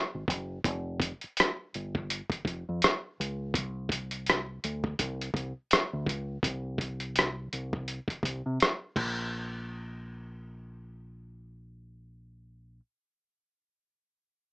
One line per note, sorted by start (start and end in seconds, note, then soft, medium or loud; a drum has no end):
0.15 0.26 G#1 medium
0.28 0.58 F#1 medium
0.28 kick medium
0.28 closed hi-hat medium
0.64 1.11 F1 medium
0.64 kick loud
0.64 closed hi-hat medium
1.00 kick medium
1.00 closed hi-hat medium
1.21 muted fingered electric bass stroke soft
1.21 closed hi-hat soft
1.37 cross-stick medium
1.37 closed hi-hat medium
1.74 2.20 G1 medium
1.74 closed hi-hat soft
1.95 kick medium
2.10 closed hi-hat medium
2.30 kick medium
2.30 closed hi-hat soft
2.45 2.62 F1 medium
2.45 kick medium
2.45 closed hi-hat medium
2.69 2.80 F2 medium
2.82 cross-stick loud
2.82 closed hi-hat medium
3.20 3.55 C#2 medium
3.20 closed hi-hat soft
3.54 4.59 C2 medium
3.54 kick loud
3.54 closed hi-hat medium
3.89 kick medium
3.89 closed hi-hat medium
4.11 closed hi-hat soft
4.26 cross-stick medium
4.26 closed hi-hat medium
4.64 4.92 D2 medium
4.64 closed hi-hat medium
4.84 kick medium
4.99 5.28 C2 medium
4.99 kick medium
4.99 closed hi-hat medium
5.21 closed hi-hat soft
5.34 5.52 C2 medium
5.34 kick medium
5.34 closed hi-hat medium
5.71 cross-stick loud
5.71 closed hi-hat medium
5.93 6.05 D2 medium
6.06 6.36 C#2 medium
6.06 kick medium
6.06 closed hi-hat medium
6.43 7.48 C2 medium
6.43 kick loud
6.43 closed hi-hat medium
6.78 kick medium
6.78 closed hi-hat medium
7.00 closed hi-hat soft
7.16 cross-stick medium
7.16 closed hi-hat medium
7.53 7.98 C2 medium
7.53 closed hi-hat soft
7.73 kick medium
7.88 closed hi-hat medium
8.08 kick medium
8.08 closed hi-hat soft
8.23 8.41 C2 medium
8.23 kick medium
8.23 closed hi-hat medium
8.46 8.58 C3 medium
8.60 cross-stick medium
8.60 closed hi-hat medium
8.96 12.79 A#1 medium
8.96 kick medium
8.96 crash medium